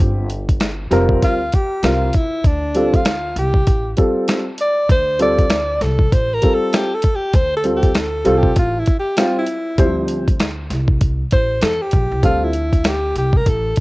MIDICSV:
0, 0, Header, 1, 5, 480
1, 0, Start_track
1, 0, Key_signature, -1, "minor"
1, 0, Tempo, 612245
1, 1915, Time_signature, 4, 2, 24, 8
1, 10822, End_track
2, 0, Start_track
2, 0, Title_t, "Alto saxophone"
2, 0, Program_c, 0, 65
2, 974, Note_on_c, 0, 65, 98
2, 1217, Note_on_c, 0, 67, 106
2, 1228, Note_off_c, 0, 65, 0
2, 1446, Note_off_c, 0, 67, 0
2, 1452, Note_on_c, 0, 65, 89
2, 1692, Note_on_c, 0, 64, 87
2, 1704, Note_off_c, 0, 65, 0
2, 1930, Note_on_c, 0, 62, 98
2, 1942, Note_off_c, 0, 64, 0
2, 2313, Note_on_c, 0, 65, 89
2, 2325, Note_off_c, 0, 62, 0
2, 2640, Note_off_c, 0, 65, 0
2, 2654, Note_on_c, 0, 67, 93
2, 3093, Note_off_c, 0, 67, 0
2, 3614, Note_on_c, 0, 74, 100
2, 3828, Note_off_c, 0, 74, 0
2, 3852, Note_on_c, 0, 72, 109
2, 4067, Note_off_c, 0, 72, 0
2, 4095, Note_on_c, 0, 74, 107
2, 4566, Note_on_c, 0, 69, 97
2, 4578, Note_off_c, 0, 74, 0
2, 4805, Note_on_c, 0, 72, 99
2, 4817, Note_off_c, 0, 69, 0
2, 4970, Note_on_c, 0, 70, 93
2, 4981, Note_off_c, 0, 72, 0
2, 5132, Note_on_c, 0, 69, 96
2, 5144, Note_off_c, 0, 70, 0
2, 5286, Note_on_c, 0, 67, 86
2, 5297, Note_off_c, 0, 69, 0
2, 5445, Note_on_c, 0, 69, 94
2, 5457, Note_off_c, 0, 67, 0
2, 5611, Note_on_c, 0, 67, 89
2, 5623, Note_off_c, 0, 69, 0
2, 5767, Note_on_c, 0, 72, 104
2, 5778, Note_off_c, 0, 67, 0
2, 5921, Note_off_c, 0, 72, 0
2, 5933, Note_on_c, 0, 69, 93
2, 6000, Note_off_c, 0, 69, 0
2, 6086, Note_on_c, 0, 67, 87
2, 6251, Note_on_c, 0, 69, 98
2, 6263, Note_off_c, 0, 67, 0
2, 6569, Note_on_c, 0, 67, 86
2, 6580, Note_off_c, 0, 69, 0
2, 6721, Note_off_c, 0, 67, 0
2, 6733, Note_on_c, 0, 65, 93
2, 6894, Note_on_c, 0, 64, 89
2, 6905, Note_off_c, 0, 65, 0
2, 7044, Note_off_c, 0, 64, 0
2, 7050, Note_on_c, 0, 67, 87
2, 7207, Note_on_c, 0, 65, 87
2, 7218, Note_off_c, 0, 67, 0
2, 7355, Note_off_c, 0, 65, 0
2, 7360, Note_on_c, 0, 64, 82
2, 8046, Note_off_c, 0, 64, 0
2, 8883, Note_on_c, 0, 72, 104
2, 9115, Note_on_c, 0, 69, 93
2, 9127, Note_off_c, 0, 72, 0
2, 9268, Note_on_c, 0, 67, 80
2, 9280, Note_off_c, 0, 69, 0
2, 9591, Note_off_c, 0, 67, 0
2, 9605, Note_on_c, 0, 65, 98
2, 9753, Note_on_c, 0, 64, 86
2, 9765, Note_off_c, 0, 65, 0
2, 10092, Note_on_c, 0, 67, 91
2, 10104, Note_off_c, 0, 64, 0
2, 10323, Note_off_c, 0, 67, 0
2, 10334, Note_on_c, 0, 67, 98
2, 10481, Note_on_c, 0, 70, 96
2, 10493, Note_off_c, 0, 67, 0
2, 10576, Note_on_c, 0, 69, 103
2, 10588, Note_off_c, 0, 70, 0
2, 10805, Note_off_c, 0, 69, 0
2, 10822, End_track
3, 0, Start_track
3, 0, Title_t, "Grand piano"
3, 0, Program_c, 1, 0
3, 0, Note_on_c, 1, 55, 76
3, 0, Note_on_c, 1, 60, 64
3, 0, Note_on_c, 1, 65, 64
3, 0, Note_on_c, 1, 67, 79
3, 195, Note_off_c, 1, 55, 0
3, 198, Note_off_c, 1, 60, 0
3, 200, Note_off_c, 1, 65, 0
3, 202, Note_off_c, 1, 67, 0
3, 710, Note_on_c, 1, 55, 80
3, 716, Note_on_c, 1, 60, 77
3, 719, Note_on_c, 1, 65, 73
3, 724, Note_on_c, 1, 70, 92
3, 1070, Note_off_c, 1, 55, 0
3, 1073, Note_off_c, 1, 60, 0
3, 1075, Note_off_c, 1, 65, 0
3, 1077, Note_off_c, 1, 70, 0
3, 1433, Note_on_c, 1, 55, 61
3, 1437, Note_on_c, 1, 60, 54
3, 1443, Note_on_c, 1, 65, 51
3, 1446, Note_on_c, 1, 70, 62
3, 1618, Note_off_c, 1, 55, 0
3, 1620, Note_off_c, 1, 60, 0
3, 1623, Note_off_c, 1, 65, 0
3, 1625, Note_off_c, 1, 70, 0
3, 2152, Note_on_c, 1, 55, 67
3, 2158, Note_on_c, 1, 60, 64
3, 2161, Note_on_c, 1, 65, 64
3, 2164, Note_on_c, 1, 69, 73
3, 2338, Note_off_c, 1, 55, 0
3, 2340, Note_off_c, 1, 60, 0
3, 2342, Note_off_c, 1, 65, 0
3, 2344, Note_off_c, 1, 69, 0
3, 3112, Note_on_c, 1, 55, 66
3, 3117, Note_on_c, 1, 60, 59
3, 3120, Note_on_c, 1, 65, 61
3, 3123, Note_on_c, 1, 69, 74
3, 3471, Note_off_c, 1, 55, 0
3, 3474, Note_off_c, 1, 60, 0
3, 3475, Note_off_c, 1, 65, 0
3, 3476, Note_off_c, 1, 69, 0
3, 4069, Note_on_c, 1, 55, 72
3, 4072, Note_on_c, 1, 60, 67
3, 4077, Note_on_c, 1, 65, 67
3, 4080, Note_on_c, 1, 69, 78
3, 4256, Note_off_c, 1, 55, 0
3, 4258, Note_off_c, 1, 60, 0
3, 4260, Note_off_c, 1, 65, 0
3, 4262, Note_off_c, 1, 69, 0
3, 5031, Note_on_c, 1, 55, 66
3, 5037, Note_on_c, 1, 60, 61
3, 5041, Note_on_c, 1, 65, 59
3, 5046, Note_on_c, 1, 69, 73
3, 5390, Note_off_c, 1, 55, 0
3, 5393, Note_off_c, 1, 60, 0
3, 5396, Note_off_c, 1, 65, 0
3, 5398, Note_off_c, 1, 69, 0
3, 5988, Note_on_c, 1, 55, 62
3, 5991, Note_on_c, 1, 60, 61
3, 5998, Note_on_c, 1, 65, 57
3, 6001, Note_on_c, 1, 69, 70
3, 6175, Note_off_c, 1, 55, 0
3, 6177, Note_off_c, 1, 60, 0
3, 6181, Note_off_c, 1, 65, 0
3, 6182, Note_off_c, 1, 69, 0
3, 6465, Note_on_c, 1, 55, 81
3, 6471, Note_on_c, 1, 60, 75
3, 6474, Note_on_c, 1, 65, 76
3, 6476, Note_on_c, 1, 69, 95
3, 6654, Note_off_c, 1, 55, 0
3, 6657, Note_off_c, 1, 60, 0
3, 6659, Note_off_c, 1, 65, 0
3, 6660, Note_off_c, 1, 69, 0
3, 7186, Note_on_c, 1, 55, 63
3, 7192, Note_on_c, 1, 60, 62
3, 7193, Note_on_c, 1, 65, 62
3, 7198, Note_on_c, 1, 67, 73
3, 7374, Note_off_c, 1, 55, 0
3, 7378, Note_off_c, 1, 60, 0
3, 7378, Note_off_c, 1, 65, 0
3, 7381, Note_off_c, 1, 67, 0
3, 7668, Note_on_c, 1, 55, 74
3, 7671, Note_on_c, 1, 60, 68
3, 7677, Note_on_c, 1, 64, 51
3, 7679, Note_on_c, 1, 72, 79
3, 7726, Note_on_c, 1, 53, 60
3, 7738, Note_off_c, 1, 64, 0
3, 8029, Note_off_c, 1, 55, 0
3, 8030, Note_off_c, 1, 60, 0
3, 8035, Note_off_c, 1, 72, 0
3, 8058, Note_off_c, 1, 53, 0
3, 9584, Note_on_c, 1, 55, 65
3, 9588, Note_on_c, 1, 60, 60
3, 9590, Note_on_c, 1, 65, 63
3, 9595, Note_on_c, 1, 69, 75
3, 9774, Note_off_c, 1, 55, 0
3, 9775, Note_off_c, 1, 60, 0
3, 9776, Note_off_c, 1, 65, 0
3, 9779, Note_off_c, 1, 69, 0
3, 10822, End_track
4, 0, Start_track
4, 0, Title_t, "Upright bass"
4, 0, Program_c, 2, 32
4, 0, Note_on_c, 2, 31, 102
4, 683, Note_off_c, 2, 31, 0
4, 713, Note_on_c, 2, 29, 96
4, 912, Note_off_c, 2, 29, 0
4, 960, Note_on_c, 2, 38, 81
4, 1157, Note_off_c, 2, 38, 0
4, 1432, Note_on_c, 2, 36, 90
4, 1632, Note_off_c, 2, 36, 0
4, 1913, Note_on_c, 2, 38, 91
4, 2602, Note_off_c, 2, 38, 0
4, 2633, Note_on_c, 2, 36, 92
4, 2833, Note_off_c, 2, 36, 0
4, 2878, Note_on_c, 2, 33, 90
4, 3076, Note_off_c, 2, 33, 0
4, 3836, Note_on_c, 2, 38, 104
4, 4524, Note_off_c, 2, 38, 0
4, 4555, Note_on_c, 2, 36, 98
4, 4754, Note_off_c, 2, 36, 0
4, 4800, Note_on_c, 2, 33, 94
4, 4997, Note_off_c, 2, 33, 0
4, 5752, Note_on_c, 2, 38, 98
4, 6442, Note_off_c, 2, 38, 0
4, 6469, Note_on_c, 2, 36, 88
4, 6670, Note_off_c, 2, 36, 0
4, 6713, Note_on_c, 2, 33, 101
4, 6913, Note_off_c, 2, 33, 0
4, 7669, Note_on_c, 2, 38, 104
4, 8360, Note_off_c, 2, 38, 0
4, 8390, Note_on_c, 2, 36, 96
4, 8790, Note_off_c, 2, 36, 0
4, 8878, Note_on_c, 2, 33, 95
4, 9075, Note_off_c, 2, 33, 0
4, 9107, Note_on_c, 2, 40, 87
4, 9232, Note_off_c, 2, 40, 0
4, 9353, Note_on_c, 2, 34, 93
4, 9476, Note_off_c, 2, 34, 0
4, 9498, Note_on_c, 2, 36, 85
4, 9576, Note_off_c, 2, 36, 0
4, 9588, Note_on_c, 2, 38, 98
4, 10280, Note_off_c, 2, 38, 0
4, 10313, Note_on_c, 2, 36, 90
4, 10513, Note_off_c, 2, 36, 0
4, 10553, Note_on_c, 2, 33, 94
4, 10753, Note_off_c, 2, 33, 0
4, 10822, End_track
5, 0, Start_track
5, 0, Title_t, "Drums"
5, 233, Note_on_c, 9, 42, 73
5, 311, Note_off_c, 9, 42, 0
5, 383, Note_on_c, 9, 36, 88
5, 384, Note_on_c, 9, 42, 57
5, 461, Note_off_c, 9, 36, 0
5, 462, Note_off_c, 9, 42, 0
5, 471, Note_on_c, 9, 42, 90
5, 476, Note_on_c, 9, 38, 100
5, 550, Note_off_c, 9, 42, 0
5, 554, Note_off_c, 9, 38, 0
5, 717, Note_on_c, 9, 42, 63
5, 721, Note_on_c, 9, 38, 33
5, 795, Note_off_c, 9, 42, 0
5, 799, Note_off_c, 9, 38, 0
5, 854, Note_on_c, 9, 36, 94
5, 932, Note_off_c, 9, 36, 0
5, 959, Note_on_c, 9, 42, 82
5, 960, Note_on_c, 9, 36, 89
5, 1037, Note_off_c, 9, 42, 0
5, 1038, Note_off_c, 9, 36, 0
5, 1194, Note_on_c, 9, 42, 67
5, 1204, Note_on_c, 9, 36, 88
5, 1272, Note_off_c, 9, 42, 0
5, 1282, Note_off_c, 9, 36, 0
5, 1434, Note_on_c, 9, 42, 81
5, 1442, Note_on_c, 9, 38, 101
5, 1512, Note_off_c, 9, 42, 0
5, 1520, Note_off_c, 9, 38, 0
5, 1670, Note_on_c, 9, 42, 76
5, 1681, Note_on_c, 9, 36, 89
5, 1748, Note_off_c, 9, 42, 0
5, 1760, Note_off_c, 9, 36, 0
5, 1915, Note_on_c, 9, 36, 110
5, 1915, Note_on_c, 9, 42, 93
5, 1994, Note_off_c, 9, 36, 0
5, 1994, Note_off_c, 9, 42, 0
5, 2152, Note_on_c, 9, 42, 67
5, 2231, Note_off_c, 9, 42, 0
5, 2302, Note_on_c, 9, 36, 87
5, 2303, Note_on_c, 9, 42, 58
5, 2380, Note_off_c, 9, 36, 0
5, 2381, Note_off_c, 9, 42, 0
5, 2392, Note_on_c, 9, 42, 95
5, 2396, Note_on_c, 9, 38, 114
5, 2470, Note_off_c, 9, 42, 0
5, 2475, Note_off_c, 9, 38, 0
5, 2637, Note_on_c, 9, 42, 67
5, 2715, Note_off_c, 9, 42, 0
5, 2775, Note_on_c, 9, 36, 90
5, 2853, Note_off_c, 9, 36, 0
5, 2876, Note_on_c, 9, 42, 89
5, 2880, Note_on_c, 9, 36, 95
5, 2955, Note_off_c, 9, 42, 0
5, 2958, Note_off_c, 9, 36, 0
5, 3112, Note_on_c, 9, 42, 70
5, 3124, Note_on_c, 9, 36, 92
5, 3190, Note_off_c, 9, 42, 0
5, 3202, Note_off_c, 9, 36, 0
5, 3354, Note_on_c, 9, 42, 89
5, 3362, Note_on_c, 9, 38, 105
5, 3433, Note_off_c, 9, 42, 0
5, 3441, Note_off_c, 9, 38, 0
5, 3590, Note_on_c, 9, 42, 75
5, 3668, Note_off_c, 9, 42, 0
5, 3837, Note_on_c, 9, 36, 113
5, 3839, Note_on_c, 9, 42, 93
5, 3915, Note_off_c, 9, 36, 0
5, 3917, Note_off_c, 9, 42, 0
5, 4072, Note_on_c, 9, 42, 74
5, 4150, Note_off_c, 9, 42, 0
5, 4222, Note_on_c, 9, 42, 59
5, 4223, Note_on_c, 9, 36, 84
5, 4300, Note_off_c, 9, 42, 0
5, 4301, Note_off_c, 9, 36, 0
5, 4309, Note_on_c, 9, 42, 90
5, 4314, Note_on_c, 9, 38, 106
5, 4388, Note_off_c, 9, 42, 0
5, 4392, Note_off_c, 9, 38, 0
5, 4556, Note_on_c, 9, 42, 66
5, 4560, Note_on_c, 9, 38, 36
5, 4634, Note_off_c, 9, 42, 0
5, 4638, Note_off_c, 9, 38, 0
5, 4694, Note_on_c, 9, 36, 96
5, 4773, Note_off_c, 9, 36, 0
5, 4800, Note_on_c, 9, 36, 101
5, 4800, Note_on_c, 9, 42, 81
5, 4878, Note_off_c, 9, 36, 0
5, 4879, Note_off_c, 9, 42, 0
5, 5032, Note_on_c, 9, 42, 74
5, 5044, Note_on_c, 9, 36, 94
5, 5111, Note_off_c, 9, 42, 0
5, 5122, Note_off_c, 9, 36, 0
5, 5275, Note_on_c, 9, 42, 87
5, 5283, Note_on_c, 9, 38, 107
5, 5353, Note_off_c, 9, 42, 0
5, 5362, Note_off_c, 9, 38, 0
5, 5504, Note_on_c, 9, 42, 79
5, 5519, Note_on_c, 9, 36, 92
5, 5583, Note_off_c, 9, 42, 0
5, 5598, Note_off_c, 9, 36, 0
5, 5750, Note_on_c, 9, 42, 90
5, 5752, Note_on_c, 9, 36, 116
5, 5828, Note_off_c, 9, 42, 0
5, 5831, Note_off_c, 9, 36, 0
5, 5988, Note_on_c, 9, 42, 69
5, 6066, Note_off_c, 9, 42, 0
5, 6137, Note_on_c, 9, 42, 58
5, 6139, Note_on_c, 9, 36, 84
5, 6215, Note_off_c, 9, 42, 0
5, 6218, Note_off_c, 9, 36, 0
5, 6230, Note_on_c, 9, 42, 89
5, 6234, Note_on_c, 9, 38, 100
5, 6308, Note_off_c, 9, 42, 0
5, 6313, Note_off_c, 9, 38, 0
5, 6469, Note_on_c, 9, 42, 63
5, 6547, Note_off_c, 9, 42, 0
5, 6609, Note_on_c, 9, 36, 99
5, 6688, Note_off_c, 9, 36, 0
5, 6710, Note_on_c, 9, 42, 84
5, 6715, Note_on_c, 9, 36, 100
5, 6789, Note_off_c, 9, 42, 0
5, 6793, Note_off_c, 9, 36, 0
5, 6946, Note_on_c, 9, 42, 73
5, 6959, Note_on_c, 9, 36, 92
5, 7024, Note_off_c, 9, 42, 0
5, 7037, Note_off_c, 9, 36, 0
5, 7188, Note_on_c, 9, 42, 88
5, 7196, Note_on_c, 9, 38, 109
5, 7266, Note_off_c, 9, 42, 0
5, 7275, Note_off_c, 9, 38, 0
5, 7420, Note_on_c, 9, 42, 73
5, 7499, Note_off_c, 9, 42, 0
5, 7669, Note_on_c, 9, 42, 99
5, 7670, Note_on_c, 9, 36, 114
5, 7747, Note_off_c, 9, 42, 0
5, 7748, Note_off_c, 9, 36, 0
5, 7903, Note_on_c, 9, 42, 73
5, 7982, Note_off_c, 9, 42, 0
5, 8057, Note_on_c, 9, 36, 89
5, 8058, Note_on_c, 9, 42, 59
5, 8136, Note_off_c, 9, 36, 0
5, 8137, Note_off_c, 9, 42, 0
5, 8150, Note_on_c, 9, 42, 94
5, 8155, Note_on_c, 9, 38, 107
5, 8229, Note_off_c, 9, 42, 0
5, 8233, Note_off_c, 9, 38, 0
5, 8391, Note_on_c, 9, 42, 66
5, 8395, Note_on_c, 9, 38, 38
5, 8470, Note_off_c, 9, 42, 0
5, 8474, Note_off_c, 9, 38, 0
5, 8529, Note_on_c, 9, 36, 99
5, 8607, Note_off_c, 9, 36, 0
5, 8630, Note_on_c, 9, 42, 82
5, 8634, Note_on_c, 9, 36, 95
5, 8709, Note_off_c, 9, 42, 0
5, 8712, Note_off_c, 9, 36, 0
5, 8866, Note_on_c, 9, 42, 74
5, 8879, Note_on_c, 9, 36, 96
5, 8945, Note_off_c, 9, 42, 0
5, 8957, Note_off_c, 9, 36, 0
5, 9106, Note_on_c, 9, 42, 88
5, 9115, Note_on_c, 9, 38, 106
5, 9185, Note_off_c, 9, 42, 0
5, 9193, Note_off_c, 9, 38, 0
5, 9339, Note_on_c, 9, 42, 78
5, 9355, Note_on_c, 9, 36, 95
5, 9418, Note_off_c, 9, 42, 0
5, 9433, Note_off_c, 9, 36, 0
5, 9589, Note_on_c, 9, 36, 117
5, 9589, Note_on_c, 9, 42, 82
5, 9668, Note_off_c, 9, 36, 0
5, 9668, Note_off_c, 9, 42, 0
5, 9826, Note_on_c, 9, 42, 69
5, 9904, Note_off_c, 9, 42, 0
5, 9978, Note_on_c, 9, 36, 80
5, 9980, Note_on_c, 9, 42, 56
5, 10057, Note_off_c, 9, 36, 0
5, 10058, Note_off_c, 9, 42, 0
5, 10069, Note_on_c, 9, 42, 87
5, 10074, Note_on_c, 9, 38, 106
5, 10148, Note_off_c, 9, 42, 0
5, 10152, Note_off_c, 9, 38, 0
5, 10314, Note_on_c, 9, 42, 64
5, 10392, Note_off_c, 9, 42, 0
5, 10450, Note_on_c, 9, 36, 93
5, 10528, Note_off_c, 9, 36, 0
5, 10553, Note_on_c, 9, 42, 81
5, 10554, Note_on_c, 9, 36, 92
5, 10631, Note_off_c, 9, 42, 0
5, 10633, Note_off_c, 9, 36, 0
5, 10787, Note_on_c, 9, 42, 68
5, 10798, Note_on_c, 9, 36, 89
5, 10822, Note_off_c, 9, 36, 0
5, 10822, Note_off_c, 9, 42, 0
5, 10822, End_track
0, 0, End_of_file